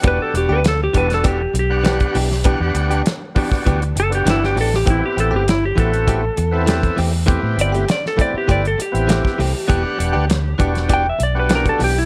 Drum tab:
HH |x-x-x-xxx-x-xxo-|x-xxx-o-xxxxx-o-|x-x-x-xxx-x-xxo-|x-xxx-x-xxxxx-o-|
SD |----o--o----o--o|----o--o----oo-o|----o-------o---|----oo------oo--|
BD |o-----o-o----o--|o-----ooo-------|o-----o-o----o--|o-----o-o----o--|

HH |x-x-x-xxx-x-xxo-|
SD |----o--o----o---|
BD |o-----o-o----o--|